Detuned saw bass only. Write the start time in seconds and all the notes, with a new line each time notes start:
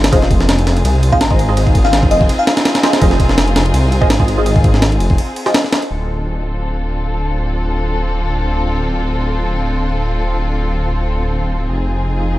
Already playing: G1
0.13 F1
0.67 F1
0.85 C2
1.13 G#1
2.11 F1
3.02 F1
3.56 F1
3.74 C2
4.02 G#1
5.00 F1
5.91 D1
11.69 F1